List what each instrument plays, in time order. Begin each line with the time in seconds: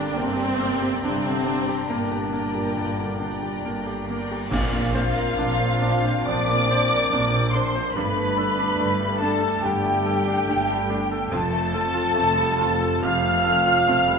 Already playing: grand piano G2 D3 A#3 D4 G4, french horn section D3, clarinet C4, viola section D4, violin section D5 G5 A#5
0.14 double bass section G1, cello section G2, grand piano A#3, viola section C4
0.20 french horn section C3
0.36 grand piano G4
0.58 grand piano A#3, violin section D5 G5 A#5
0.82 grand piano G4
1.02 double bass section G1, cello section G2, grand piano G2, french horn section C3, viola section C4, clarinet D4
1.26 grand piano D3
1.45 grand piano D4, violin section D5 G5 A#5
1.68 grand piano G4
1.89 double bass section G1, cello section G2, french horn section A#2, grand piano A#3, viola section A#3
2.11 grand piano G4
2.33 grand piano A#3, violin section D5 G5 A#5
2.54 grand piano G4
2.77 double bass section G1, grand piano G2, cello section G2
2.99 grand piano D3
3.20 grand piano D4, violin section D5 G5 A#5
3.42 grand piano G4
3.65 double bass section G1, cello section G2, grand piano A#3
3.87 grand piano G4
4.09 grand piano A#3, violin section D5 G5 A#5
4.31 grand piano G4
4.51 double bass section A#1, grand piano A#2, timpani A#2, cello section A#2, viola section C4 D4, french horn section C4 D4, clarinet F4, violin section F4 F5, flute section F5, concert bass drum, crash
4.73 grand piano A#3
4.95 viola section C4 D4, grand piano C5
5.16 grand piano A#4
5.37 double bass section A#1, cello section A#2, viola section C4 D4, grand piano D4
5.60 grand piano C4
5.82 viola section C4 D4, grand piano D4
6.05 grand piano C5
6.24 double bass section A#1, cello section A#2, grand piano F3, viola section C4 D4, clarinet D5, violin section D5 D6, flute section D6
6.50 grand piano A#3
6.70 viola section C4 D4, grand piano C5
6.91 grand piano A#4
7.11 double bass section A#1, cello section A#2, viola section C4 D4, grand piano D4
7.34 grand piano C4
7.52 viola section C4 D4, grand piano D4, violin section C5 C6, clarinet C5, flute section C6
7.75 grand piano C5
7.93 double bass section G1, cello section G2, grand piano G2, viola section A3 D4, french horn section D4, violin section B4 B5, clarinet B4, flute section B5
7.98 french horn section A3
8.17 grand piano A3
8.37 viola section A3 D4, grand piano A4
8.59 grand piano D4
8.78 double bass section G1, cello section G2, viola section A3 D4, grand piano A3
9.00 grand piano G3
9.20 viola section A3 D4, grand piano D4, clarinet A4, violin section A4 A5, flute section A5
9.43 grand piano A4
9.63 double bass section G1, cello section G2, grand piano D3, viola section A3 D4, violin section G4 G5, clarinet G4, flute section G5
9.85 grand piano A3
10.06 viola section A3 D4, grand piano A4
10.28 grand piano D4
10.48 double bass section G1, cello section G2, grand piano A3, viola section A3 D4
10.70 grand piano G3
10.90 viola section A3 D4, grand piano D4
11.11 grand piano A4
11.31 double bass section F1, cello section F2, grand piano F2, viola section C4 F4, french horn section C4 F4, violin section A4 A5, clarinet A4, flute section A5
11.53 grand piano A3
11.74 viola section C4 F4, grand piano A4
11.94 grand piano F4
12.14 double bass section F1, cello section F2, grand piano A3, viola section C4 F4
12.37 grand piano G3
12.58 viola section C4 F4, grand piano F4
12.80 grand piano A4
13.02 double bass section F1, cello section F2, grand piano C3, viola section C4 F4, clarinet F5, violin section F5 F6, flute section F6
13.24 grand piano A3
13.44 viola section C4 F4, grand piano A4
13.65 grand piano F4
13.87 double bass section F1, cello section F2, grand piano A3, viola section C4 F4
14.08 grand piano G3